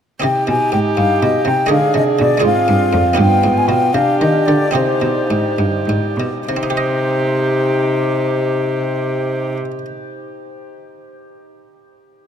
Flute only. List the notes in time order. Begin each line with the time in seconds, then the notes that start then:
0.25 G5
0.48 G#5
0.73 G5
0.97 F5
1.23 D#5
1.47 G5
1.71 F5
1.97 D#5
2.20 D5
2.46 F5
3.20 G5
3.57 G#5
3.69 G5
3.94 F5
4.21 D#5
4.46 D5
4.74 C5
6.49 C5